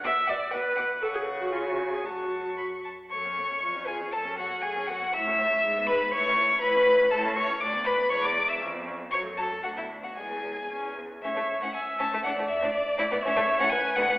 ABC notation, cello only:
X:1
M:2/4
L:1/16
Q:1/4=119
K:F#m
V:1 name="Cello" clef=bass
B,,2 B,,2 B,,2 B,,2 | C,8 | F,,6 z2 | F,,4 ^E,,4 |
F,,4 F,,4 | A,,4 G,,4 | A,,4 A,,4 | [K:A] A,,4 D,,4 |
E,,4 ^E,,4 | F,,4 D,,4 | E,,4 E,,4 | A,, A,, z A,, z2 A,, A,, |
A,, A,, z A,, z2 A,, A,, | A,, A,, z A,, z2 D,, D,, |]